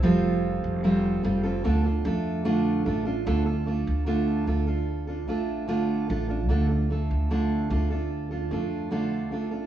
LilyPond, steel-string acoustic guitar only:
\new Staff \with { instrumentName = "Steel-string acoustic guitar" } { \time 4/4 \key d \minor \tempo 4 = 74 <f g c' f' a'>4 <f g c' f' a'>8 <g c' f' a'>16 <c' f' a'>16 <d a d' f' a'>16 <d' f' a'>16 <a d' f' a'>8 <d a d' f' a'>8 <a d' f' a'>16 <d' f' a'>16 | <d a d' f' a'>16 <d' f' a'>16 <a d' f' a'>8 <d a d' f' a'>8 <a d' f' a'>16 <d' f' a'>8 <d' f' a'>16 <a d' f' a'>8 <d a d' f' a'>8 <a d' f' a'>16 <d' f' a'>16 | <d a d' f' a'>16 <d' f' a'>16 <a d' f' a'>8 <d a d' f' a'>8 <a d' f' a'>16 <d' f' a'>8 <d' f' a'>16 <a d' f' a'>8 <d a d' f' a'>8 <a d' f' a'>16 <d' f' a'>16 | }